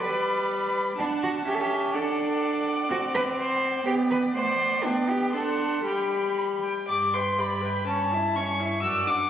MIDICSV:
0, 0, Header, 1, 5, 480
1, 0, Start_track
1, 0, Key_signature, 1, "major"
1, 0, Tempo, 480384
1, 28, Time_signature, 2, 2, 24, 8
1, 4348, Tempo, 505902
1, 7228, Tempo, 479233
1, 9142, End_track
2, 0, Start_track
2, 0, Title_t, "Violin"
2, 0, Program_c, 0, 40
2, 29, Note_on_c, 0, 83, 39
2, 949, Note_off_c, 0, 83, 0
2, 981, Note_on_c, 0, 81, 42
2, 1902, Note_off_c, 0, 81, 0
2, 1945, Note_on_c, 0, 78, 49
2, 3821, Note_off_c, 0, 78, 0
2, 3846, Note_on_c, 0, 79, 46
2, 4306, Note_off_c, 0, 79, 0
2, 4347, Note_on_c, 0, 78, 49
2, 4780, Note_off_c, 0, 78, 0
2, 4808, Note_on_c, 0, 79, 45
2, 5256, Note_off_c, 0, 79, 0
2, 5278, Note_on_c, 0, 84, 45
2, 5739, Note_off_c, 0, 84, 0
2, 5775, Note_on_c, 0, 83, 39
2, 6517, Note_off_c, 0, 83, 0
2, 6762, Note_on_c, 0, 86, 54
2, 6995, Note_on_c, 0, 84, 54
2, 7009, Note_off_c, 0, 86, 0
2, 7241, Note_on_c, 0, 83, 57
2, 7256, Note_off_c, 0, 84, 0
2, 7713, Note_off_c, 0, 83, 0
2, 7719, Note_on_c, 0, 81, 51
2, 8202, Note_on_c, 0, 85, 58
2, 8217, Note_off_c, 0, 81, 0
2, 8668, Note_off_c, 0, 85, 0
2, 8674, Note_on_c, 0, 88, 59
2, 8919, Note_on_c, 0, 86, 52
2, 8934, Note_off_c, 0, 88, 0
2, 9142, Note_off_c, 0, 86, 0
2, 9142, End_track
3, 0, Start_track
3, 0, Title_t, "Violin"
3, 0, Program_c, 1, 40
3, 0, Note_on_c, 1, 74, 40
3, 947, Note_off_c, 1, 74, 0
3, 985, Note_on_c, 1, 78, 41
3, 1431, Note_off_c, 1, 78, 0
3, 1462, Note_on_c, 1, 76, 44
3, 1911, Note_off_c, 1, 76, 0
3, 1945, Note_on_c, 1, 74, 53
3, 3822, Note_off_c, 1, 74, 0
3, 3868, Note_on_c, 1, 74, 51
3, 5258, Note_off_c, 1, 74, 0
3, 5301, Note_on_c, 1, 78, 44
3, 5752, Note_off_c, 1, 78, 0
3, 5794, Note_on_c, 1, 79, 38
3, 6196, Note_off_c, 1, 79, 0
3, 6273, Note_on_c, 1, 83, 46
3, 6348, Note_off_c, 1, 83, 0
3, 6515, Note_on_c, 1, 79, 43
3, 6744, Note_off_c, 1, 79, 0
3, 6750, Note_on_c, 1, 74, 37
3, 6996, Note_on_c, 1, 79, 34
3, 7010, Note_off_c, 1, 74, 0
3, 7224, Note_on_c, 1, 74, 36
3, 7238, Note_off_c, 1, 79, 0
3, 7487, Note_on_c, 1, 79, 35
3, 7502, Note_off_c, 1, 74, 0
3, 7727, Note_off_c, 1, 79, 0
3, 7732, Note_on_c, 1, 73, 37
3, 7981, Note_on_c, 1, 76, 35
3, 7996, Note_off_c, 1, 73, 0
3, 8218, Note_on_c, 1, 73, 39
3, 8233, Note_off_c, 1, 76, 0
3, 8455, Note_on_c, 1, 76, 37
3, 8470, Note_off_c, 1, 73, 0
3, 8684, Note_off_c, 1, 76, 0
3, 8692, Note_on_c, 1, 74, 42
3, 8926, Note_on_c, 1, 78, 37
3, 8941, Note_off_c, 1, 74, 0
3, 9142, Note_off_c, 1, 78, 0
3, 9142, End_track
4, 0, Start_track
4, 0, Title_t, "Cello"
4, 0, Program_c, 2, 42
4, 31, Note_on_c, 2, 71, 51
4, 737, Note_off_c, 2, 71, 0
4, 992, Note_on_c, 2, 62, 49
4, 1072, Note_off_c, 2, 62, 0
4, 1232, Note_on_c, 2, 66, 62
4, 1311, Note_off_c, 2, 66, 0
4, 1473, Note_on_c, 2, 67, 62
4, 1543, Note_on_c, 2, 69, 54
4, 1558, Note_off_c, 2, 67, 0
4, 1609, Note_on_c, 2, 67, 66
4, 1624, Note_off_c, 2, 69, 0
4, 1951, Note_on_c, 2, 69, 60
4, 1966, Note_off_c, 2, 67, 0
4, 2664, Note_off_c, 2, 69, 0
4, 2903, Note_on_c, 2, 66, 66
4, 2983, Note_off_c, 2, 66, 0
4, 3144, Note_on_c, 2, 71, 77
4, 3224, Note_off_c, 2, 71, 0
4, 3386, Note_on_c, 2, 72, 65
4, 3854, Note_off_c, 2, 72, 0
4, 3862, Note_on_c, 2, 67, 67
4, 3942, Note_off_c, 2, 67, 0
4, 4106, Note_on_c, 2, 71, 75
4, 4186, Note_off_c, 2, 71, 0
4, 4348, Note_on_c, 2, 72, 75
4, 4816, Note_on_c, 2, 62, 62
4, 4830, Note_off_c, 2, 72, 0
4, 5056, Note_on_c, 2, 67, 66
4, 5070, Note_off_c, 2, 62, 0
4, 5287, Note_off_c, 2, 67, 0
4, 5293, Note_on_c, 2, 69, 59
4, 5772, Note_off_c, 2, 69, 0
4, 5784, Note_on_c, 2, 67, 50
4, 6499, Note_off_c, 2, 67, 0
4, 6759, Note_on_c, 2, 43, 39
4, 7176, Note_off_c, 2, 43, 0
4, 7226, Note_on_c, 2, 43, 45
4, 7663, Note_off_c, 2, 43, 0
4, 7722, Note_on_c, 2, 43, 44
4, 8150, Note_off_c, 2, 43, 0
4, 8201, Note_on_c, 2, 43, 44
4, 8621, Note_off_c, 2, 43, 0
4, 8678, Note_on_c, 2, 42, 44
4, 9093, Note_off_c, 2, 42, 0
4, 9142, End_track
5, 0, Start_track
5, 0, Title_t, "Viola"
5, 0, Program_c, 3, 41
5, 16, Note_on_c, 3, 55, 48
5, 969, Note_off_c, 3, 55, 0
5, 975, Note_on_c, 3, 62, 49
5, 1448, Note_off_c, 3, 62, 0
5, 1454, Note_on_c, 3, 61, 53
5, 1937, Note_on_c, 3, 62, 53
5, 1952, Note_off_c, 3, 61, 0
5, 2894, Note_on_c, 3, 60, 61
5, 2909, Note_off_c, 3, 62, 0
5, 3850, Note_off_c, 3, 60, 0
5, 3856, Note_on_c, 3, 59, 59
5, 4336, Note_off_c, 3, 59, 0
5, 4349, Note_on_c, 3, 57, 52
5, 4819, Note_on_c, 3, 59, 55
5, 4833, Note_off_c, 3, 57, 0
5, 5289, Note_on_c, 3, 62, 49
5, 5303, Note_off_c, 3, 59, 0
5, 5774, Note_off_c, 3, 62, 0
5, 5779, Note_on_c, 3, 55, 44
5, 6541, Note_off_c, 3, 55, 0
5, 6749, Note_on_c, 3, 67, 36
5, 6991, Note_on_c, 3, 71, 34
5, 7005, Note_off_c, 3, 67, 0
5, 7226, Note_on_c, 3, 67, 35
5, 7241, Note_off_c, 3, 71, 0
5, 7463, Note_on_c, 3, 71, 32
5, 7478, Note_off_c, 3, 67, 0
5, 7711, Note_off_c, 3, 71, 0
5, 7717, Note_on_c, 3, 61, 40
5, 7957, Note_on_c, 3, 64, 35
5, 7972, Note_off_c, 3, 61, 0
5, 8199, Note_on_c, 3, 61, 38
5, 8214, Note_off_c, 3, 64, 0
5, 8439, Note_on_c, 3, 64, 35
5, 8454, Note_off_c, 3, 61, 0
5, 8668, Note_off_c, 3, 64, 0
5, 8674, Note_on_c, 3, 66, 41
5, 8909, Note_on_c, 3, 62, 37
5, 8924, Note_off_c, 3, 66, 0
5, 9142, Note_off_c, 3, 62, 0
5, 9142, End_track
0, 0, End_of_file